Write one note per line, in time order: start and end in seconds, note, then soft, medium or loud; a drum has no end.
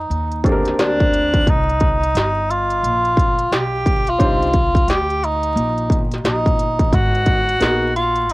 0.00 0.51 D#4 loud
0.10 0.75 D#2 loud
0.10 closed hi-hat medium
0.32 closed hi-hat soft
0.44 1.42 A#3 medium
0.44 1.42 C4 medium
0.44 1.42 D4 medium
0.44 1.42 G4 medium
0.44 0.53 A4 medium
0.44 kick medium
0.44 closed hi-hat medium
0.52 1.46 A#4 medium
0.65 snare soft
0.65 closed hi-hat medium
0.79 1.44 D2 medium
0.79 1.50 D4 medium
0.79 snare loud
0.79 closed hi-hat medium
1.00 kick medium
1.13 closed hi-hat medium
1.34 kick medium
1.34 closed hi-hat medium
1.47 2.12 C2 loud
1.47 2.52 D#4 loud
1.47 kick loud
1.47 closed hi-hat medium
1.69 closed hi-hat soft
1.80 kick medium
1.80 closed hi-hat medium
2.03 closed hi-hat soft
2.15 2.80 G1 loud
2.15 snare loud
2.15 closed hi-hat loud
2.50 3.54 F4 loud
2.50 closed hi-hat medium
2.70 closed hi-hat soft
2.83 3.48 A#1 medium
2.83 closed hi-hat medium
3.05 closed hi-hat soft
3.17 kick medium
3.17 closed hi-hat medium
3.39 closed hi-hat medium
3.51 4.16 B1 medium
3.51 4.11 G4 medium
3.51 snare loud
3.51 closed hi-hat medium
3.86 kick medium
3.86 closed hi-hat medium
4.07 4.91 F4 loud
4.07 closed hi-hat medium
4.18 4.85 C2 loud
4.18 4.46 C4 medium
4.18 4.46 D4 medium
4.18 4.47 D#4 medium
4.18 4.47 G4 medium
4.18 4.47 C5 medium
4.18 kick loud
4.18 closed hi-hat medium
4.42 closed hi-hat soft
4.53 kick medium
4.53 closed hi-hat medium
4.75 kick medium
4.75 closed hi-hat soft
4.87 5.52 D2 medium
4.87 5.26 G4 loud
4.87 snare loud
4.87 closed hi-hat loud
5.10 closed hi-hat soft
5.24 6.01 D#4 loud
5.24 closed hi-hat medium
5.43 closed hi-hat soft
5.56 6.21 A#1 loud
5.56 closed hi-hat medium
5.78 closed hi-hat soft
5.90 kick medium
5.90 closed hi-hat medium
6.11 snare soft
6.11 closed hi-hat soft
6.24 6.89 A#1 medium
6.24 6.96 D#4 medium
6.24 snare loud
6.24 closed hi-hat medium
6.46 kick medium
6.46 closed hi-hat soft
6.59 closed hi-hat medium
6.79 kick medium
6.79 closed hi-hat medium
6.93 7.57 G#1 loud
6.93 7.95 F#4 loud
6.93 kick loud
6.93 closed hi-hat medium
7.15 closed hi-hat soft
7.26 kick medium
7.26 closed hi-hat medium
7.49 closed hi-hat soft
7.60 8.29 A#1 medium
7.60 7.87 B3 medium
7.60 7.87 D#4 medium
7.60 7.87 F#4 medium
7.60 7.88 G#4 medium
7.60 7.88 A#4 medium
7.60 snare loud
7.60 closed hi-hat loud
7.96 8.32 F4 loud
7.96 closed hi-hat medium
8.16 closed hi-hat soft
8.29 8.33 F#1 medium
8.29 closed hi-hat medium